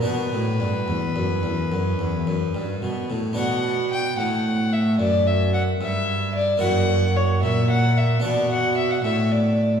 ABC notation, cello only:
X:1
M:12/8
L:1/8
Q:3/8=74
K:Bm
V:1 name="Cello" clef=bass
B,, A,, G,, E,, F,, E,, F,, E,, F,, G,, B,, A,, | B,,3 A,,3 F,,3 G,,3 | F,,3 ^A,,3 B,,3 =A,,3 |]